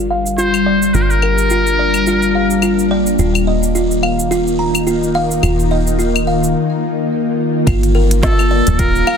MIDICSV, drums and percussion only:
0, 0, Header, 1, 2, 480
1, 0, Start_track
1, 0, Key_signature, -2, "minor"
1, 0, Tempo, 560748
1, 807, Time_signature, 4, 2, 24, 8
1, 7852, End_track
2, 0, Start_track
2, 0, Title_t, "Drums"
2, 225, Note_on_c, 9, 69, 54
2, 311, Note_off_c, 9, 69, 0
2, 329, Note_on_c, 9, 69, 49
2, 415, Note_off_c, 9, 69, 0
2, 461, Note_on_c, 9, 75, 67
2, 464, Note_on_c, 9, 69, 30
2, 547, Note_off_c, 9, 75, 0
2, 550, Note_off_c, 9, 69, 0
2, 706, Note_on_c, 9, 69, 52
2, 791, Note_off_c, 9, 69, 0
2, 808, Note_on_c, 9, 69, 48
2, 894, Note_off_c, 9, 69, 0
2, 946, Note_on_c, 9, 69, 28
2, 1031, Note_off_c, 9, 69, 0
2, 1047, Note_on_c, 9, 75, 65
2, 1133, Note_off_c, 9, 75, 0
2, 1183, Note_on_c, 9, 69, 61
2, 1269, Note_off_c, 9, 69, 0
2, 1285, Note_on_c, 9, 69, 46
2, 1371, Note_off_c, 9, 69, 0
2, 1427, Note_on_c, 9, 69, 31
2, 1513, Note_off_c, 9, 69, 0
2, 1661, Note_on_c, 9, 75, 67
2, 1664, Note_on_c, 9, 69, 62
2, 1746, Note_off_c, 9, 75, 0
2, 1749, Note_off_c, 9, 69, 0
2, 1769, Note_on_c, 9, 69, 51
2, 1855, Note_off_c, 9, 69, 0
2, 1903, Note_on_c, 9, 69, 27
2, 1989, Note_off_c, 9, 69, 0
2, 2146, Note_on_c, 9, 69, 58
2, 2231, Note_off_c, 9, 69, 0
2, 2244, Note_on_c, 9, 75, 68
2, 2247, Note_on_c, 9, 69, 55
2, 2330, Note_off_c, 9, 75, 0
2, 2333, Note_off_c, 9, 69, 0
2, 2387, Note_on_c, 9, 69, 30
2, 2473, Note_off_c, 9, 69, 0
2, 2625, Note_on_c, 9, 69, 59
2, 2711, Note_off_c, 9, 69, 0
2, 2730, Note_on_c, 9, 69, 52
2, 2815, Note_off_c, 9, 69, 0
2, 2869, Note_on_c, 9, 75, 67
2, 2872, Note_on_c, 9, 69, 31
2, 2955, Note_off_c, 9, 75, 0
2, 2957, Note_off_c, 9, 69, 0
2, 3110, Note_on_c, 9, 69, 67
2, 3195, Note_off_c, 9, 69, 0
2, 3214, Note_on_c, 9, 69, 50
2, 3300, Note_off_c, 9, 69, 0
2, 3349, Note_on_c, 9, 69, 30
2, 3435, Note_off_c, 9, 69, 0
2, 3452, Note_on_c, 9, 75, 59
2, 3537, Note_off_c, 9, 75, 0
2, 3592, Note_on_c, 9, 69, 68
2, 3678, Note_off_c, 9, 69, 0
2, 3694, Note_on_c, 9, 69, 50
2, 3780, Note_off_c, 9, 69, 0
2, 3829, Note_on_c, 9, 69, 30
2, 3915, Note_off_c, 9, 69, 0
2, 4065, Note_on_c, 9, 75, 67
2, 4067, Note_on_c, 9, 69, 67
2, 4150, Note_off_c, 9, 75, 0
2, 4153, Note_off_c, 9, 69, 0
2, 4171, Note_on_c, 9, 69, 54
2, 4256, Note_off_c, 9, 69, 0
2, 4309, Note_on_c, 9, 69, 32
2, 4394, Note_off_c, 9, 69, 0
2, 4548, Note_on_c, 9, 69, 58
2, 4634, Note_off_c, 9, 69, 0
2, 4649, Note_on_c, 9, 75, 70
2, 4651, Note_on_c, 9, 69, 50
2, 4734, Note_off_c, 9, 75, 0
2, 4737, Note_off_c, 9, 69, 0
2, 4791, Note_on_c, 9, 69, 30
2, 4877, Note_off_c, 9, 69, 0
2, 5028, Note_on_c, 9, 69, 62
2, 5113, Note_off_c, 9, 69, 0
2, 5133, Note_on_c, 9, 69, 45
2, 5219, Note_off_c, 9, 69, 0
2, 5270, Note_on_c, 9, 75, 72
2, 5273, Note_on_c, 9, 69, 30
2, 5356, Note_off_c, 9, 75, 0
2, 5358, Note_off_c, 9, 69, 0
2, 5510, Note_on_c, 9, 69, 62
2, 5596, Note_off_c, 9, 69, 0
2, 6564, Note_on_c, 9, 36, 104
2, 6567, Note_on_c, 9, 42, 57
2, 6567, Note_on_c, 9, 75, 75
2, 6570, Note_on_c, 9, 69, 53
2, 6650, Note_off_c, 9, 36, 0
2, 6653, Note_off_c, 9, 42, 0
2, 6653, Note_off_c, 9, 75, 0
2, 6656, Note_off_c, 9, 69, 0
2, 6705, Note_on_c, 9, 42, 31
2, 6708, Note_on_c, 9, 69, 33
2, 6791, Note_off_c, 9, 42, 0
2, 6794, Note_off_c, 9, 69, 0
2, 6944, Note_on_c, 9, 42, 49
2, 6947, Note_on_c, 9, 69, 69
2, 7029, Note_off_c, 9, 42, 0
2, 7032, Note_off_c, 9, 69, 0
2, 7045, Note_on_c, 9, 36, 107
2, 7047, Note_on_c, 9, 38, 107
2, 7047, Note_on_c, 9, 42, 55
2, 7050, Note_on_c, 9, 69, 55
2, 7130, Note_off_c, 9, 36, 0
2, 7133, Note_off_c, 9, 38, 0
2, 7133, Note_off_c, 9, 42, 0
2, 7136, Note_off_c, 9, 69, 0
2, 7183, Note_on_c, 9, 75, 74
2, 7186, Note_on_c, 9, 69, 33
2, 7269, Note_off_c, 9, 75, 0
2, 7271, Note_off_c, 9, 69, 0
2, 7420, Note_on_c, 9, 42, 47
2, 7423, Note_on_c, 9, 69, 69
2, 7505, Note_off_c, 9, 42, 0
2, 7508, Note_off_c, 9, 69, 0
2, 7524, Note_on_c, 9, 42, 55
2, 7525, Note_on_c, 9, 36, 107
2, 7527, Note_on_c, 9, 69, 55
2, 7610, Note_off_c, 9, 36, 0
2, 7610, Note_off_c, 9, 42, 0
2, 7613, Note_off_c, 9, 69, 0
2, 7665, Note_on_c, 9, 69, 33
2, 7751, Note_off_c, 9, 69, 0
2, 7766, Note_on_c, 9, 75, 82
2, 7851, Note_off_c, 9, 75, 0
2, 7852, End_track
0, 0, End_of_file